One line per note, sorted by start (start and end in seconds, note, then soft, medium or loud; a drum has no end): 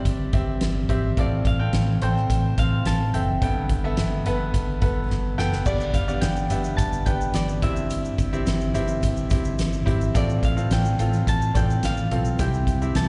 0.00 1.19 G2 medium
0.00 0.33 C4 medium
0.00 0.33 G4 medium
0.00 0.29 D5 medium
0.00 0.33 E5 loud
0.00 0.37 E5 medium
0.05 0.28 G1 loud
0.05 kick medium
0.05 closed hi-hat medium
0.33 0.56 G1 medium
0.33 0.85 C4 medium
0.33 0.85 G4 medium
0.33 0.85 E5 medium
0.33 kick medium
0.33 closed hi-hat medium
0.61 0.84 G1 loud
0.61 snare loud
0.61 closed hi-hat medium
0.89 1.12 G#1 medium
0.89 1.15 C4 medium
0.89 1.15 G4 medium
0.89 1.15 E5 loud
0.89 kick medium
0.89 closed hi-hat medium
1.17 1.40 A1 loud
1.17 1.98 A2 medium
1.17 1.57 C4 medium
1.17 1.57 A4 medium
1.17 3.04 D5 medium
1.17 1.57 F5 medium
1.17 kick loud
1.17 closed hi-hat medium
1.45 1.68 A1 medium
1.45 2.59 F5 medium
1.45 kick medium
1.45 closed hi-hat medium
1.59 1.99 C4 medium
1.59 1.99 A4 medium
1.59 1.99 G5 medium
1.73 1.96 A1 loud
1.73 snare loud
1.73 closed hi-hat medium
2.02 2.24 A1 loud
2.02 2.54 C4 medium
2.02 2.54 A4 medium
2.02 2.54 C5 medium
2.02 3.13 G5 medium
2.02 closed hi-hat medium
2.16 snare soft
2.30 2.53 A1 medium
2.30 kick medium
2.30 closed hi-hat loud
2.58 2.81 A1 loud
2.58 3.10 C4 medium
2.58 3.10 A4 medium
2.58 3.10 F5 medium
2.58 4.25 F5 medium
2.58 kick medium
2.58 closed hi-hat medium
2.85 3.09 A1 loud
2.85 4.31 A5 loud
2.85 snare loud
2.85 closed hi-hat medium
3.14 3.37 F#1 medium
3.14 3.40 C4 medium
3.14 3.40 A4 medium
3.14 3.40 E5 medium
3.14 5.06 G5 loud
3.14 closed hi-hat medium
3.42 3.65 G1 loud
3.42 4.22 G2 medium
3.42 3.81 B3 medium
3.42 3.81 A4 medium
3.42 3.81 G5 medium
3.42 kick loud
3.42 closed hi-hat medium
3.69 3.93 G1 medium
3.69 kick medium
3.69 closed hi-hat medium
3.84 4.23 B3 medium
3.84 4.23 A4 medium
3.84 4.23 E5 loud
3.97 4.21 G1 loud
3.97 snare loud
3.97 closed hi-hat loud
4.26 4.49 G1 medium
4.26 4.78 B3 medium
4.26 4.78 A4 medium
4.26 4.78 B4 loud
4.26 closed hi-hat medium
4.54 4.77 G1 loud
4.54 kick medium
4.54 closed hi-hat medium
4.82 5.05 G1 loud
4.82 5.34 B3 medium
4.82 5.34 A4 medium
4.82 5.34 B4 medium
4.82 kick medium
4.82 closed hi-hat medium
5.10 5.33 G1 loud
5.10 snare medium
5.38 5.61 F#1 medium
5.38 5.64 B3 medium
5.38 5.64 A4 medium
5.38 5.64 G5 loud
5.38 snare medium
5.52 snare medium
5.66 5.89 G1 loud
5.66 6.46 G2 medium
5.66 6.05 B3 medium
5.66 6.05 D4 medium
5.66 6.05 G4 medium
5.66 6.05 D5 medium
5.66 7.34 D5 medium
5.66 kick loud
5.66 crash loud
5.66 shaker medium
5.80 shaker soft
5.94 6.17 G1 medium
5.94 7.61 F5 medium
5.94 kick medium
5.94 closed hi-hat medium
5.94 shaker soft
6.08 6.47 B3 medium
6.08 6.47 D4 medium
6.08 6.47 G4 medium
6.08 6.47 D5 medium
6.08 shaker soft
6.21 6.45 G1 loud
6.21 7.05 G5 medium
6.21 snare loud
6.21 closed hi-hat medium
6.21 shaker medium
6.36 shaker medium
6.50 6.73 G1 loud
6.50 7.03 B3 medium
6.50 7.03 D4 medium
6.50 7.03 G4 medium
6.50 7.03 E5 medium
6.50 closed hi-hat medium
6.50 shaker medium
6.64 snare soft
6.64 shaker medium
6.76 7.01 G1 loud
6.76 8.21 A5 loud
6.76 kick medium
6.76 closed hi-hat loud
6.76 shaker medium
6.93 shaker medium
7.06 7.29 G1 loud
7.06 7.59 B3 medium
7.06 7.59 D4 medium
7.06 7.59 G4 medium
7.06 7.59 B4 medium
7.06 8.61 G5 medium
7.06 kick medium
7.06 closed hi-hat medium
7.06 shaker medium
7.21 shaker medium
7.34 7.57 G1 loud
7.34 9.19 D5 medium
7.34 snare loud
7.34 closed hi-hat medium
7.34 shaker medium
7.49 shaker soft
7.62 8.08 G1 medium
7.62 8.43 G2 medium
7.62 8.28 C4 medium
7.62 8.28 E4 medium
7.62 8.28 G4 medium
7.62 8.28 E5 medium
7.62 9.35 E5 medium
7.62 kick loud
7.62 closed hi-hat medium
7.76 shaker medium
7.90 closed hi-hat medium
7.90 shaker medium
8.05 shaker soft
8.18 8.42 G1 loud
8.18 kick medium
8.18 closed hi-hat medium
8.18 shaker soft
8.33 8.72 C4 medium
8.33 8.72 E4 medium
8.33 8.72 G4 medium
8.33 8.72 E5 medium
8.33 shaker soft
8.46 8.69 G1 loud
8.46 snare loud
8.46 closed hi-hat loud
8.46 shaker medium
8.61 shaker soft
8.74 8.98 G1 loud
8.74 9.27 C4 medium
8.74 9.27 E4 medium
8.74 9.27 G4 medium
8.74 9.27 E5 loud
8.74 closed hi-hat medium
8.74 shaker medium
8.88 shaker medium
9.03 9.26 G1 medium
9.03 kick medium
9.03 closed hi-hat loud
9.03 shaker medium
9.17 shaker soft
9.30 9.54 G1 medium
9.30 9.83 C4 medium
9.30 9.83 E4 medium
9.30 9.83 G4 medium
9.30 9.83 E5 medium
9.30 kick loud
9.30 closed hi-hat medium
9.30 shaker medium
9.45 shaker soft
9.59 9.82 G1 loud
9.59 snare loud
9.59 closed hi-hat loud
9.59 shaker medium
9.73 shaker soft
9.86 10.10 G#1 medium
9.86 10.12 C4 medium
9.86 10.12 E4 medium
9.86 10.13 G4 medium
9.86 10.13 E5 medium
9.86 kick medium
9.86 closed hi-hat medium
10.01 shaker medium
10.14 10.38 A1 loud
10.14 10.95 A2 medium
10.14 10.54 C4 medium
10.14 10.54 F4 medium
10.14 10.54 A4 medium
10.14 12.01 D5 medium
10.14 10.54 F5 medium
10.14 kick loud
10.14 closed hi-hat medium
10.14 shaker medium
10.29 shaker soft
10.43 10.66 A1 loud
10.43 10.52 F5 medium
10.43 kick medium
10.43 closed hi-hat medium
10.43 shaker medium
10.56 10.96 C4 medium
10.56 10.96 F4 medium
10.56 10.96 A4 medium
10.56 10.96 F5 medium
10.56 shaker soft
10.71 10.94 A1 loud
10.71 11.56 G5 medium
10.71 snare loud
10.71 closed hi-hat loud
10.71 shaker medium
10.85 shaker medium
10.99 11.22 A1 loud
10.99 11.51 C4 medium
10.99 11.51 F4 medium
10.99 11.51 A4 medium
10.99 11.51 F5 medium
10.99 closed hi-hat medium
10.99 shaker medium
11.13 snare soft
11.13 shaker medium
11.27 11.50 A1 loud
11.27 12.73 A5 loud
11.27 kick medium
11.27 closed hi-hat medium
11.27 shaker medium
11.42 shaker medium
11.55 11.78 A1 loud
11.55 12.07 C4 medium
11.55 12.07 F4 medium
11.55 12.07 A4 medium
11.55 12.07 D5 medium
11.55 12.40 G5 loud
11.55 kick medium
11.55 closed hi-hat medium
11.55 shaker medium
11.70 shaker medium
11.83 12.06 A1 loud
11.83 13.08 F5 medium
11.83 snare loud
11.83 closed hi-hat loud
11.83 shaker medium
11.97 shaker soft
12.11 12.34 B1 medium
12.11 12.37 C4 medium
12.11 12.38 F4 medium
12.11 12.38 A4 medium
12.11 12.38 F5 medium
12.11 closed hi-hat medium
12.25 shaker medium
12.39 12.62 C2 loud
12.39 13.08 C3 medium
12.39 12.78 C4 medium
12.39 12.78 E4 medium
12.39 12.78 G4 medium
12.39 12.78 E5 medium
12.39 13.08 G5 medium
12.39 kick loud
12.39 closed hi-hat medium
12.39 shaker medium
12.54 shaker soft
12.67 12.90 C2 medium
12.67 kick medium
12.67 closed hi-hat medium
12.67 shaker medium
12.82 13.08 C4 medium
12.82 13.08 E4 medium
12.82 13.08 G4 medium
12.82 13.08 E5 medium
12.82 shaker soft
12.95 13.08 C2 loud
12.95 13.08 A5 medium
12.95 snare loud
12.95 closed hi-hat loud
12.95 shaker medium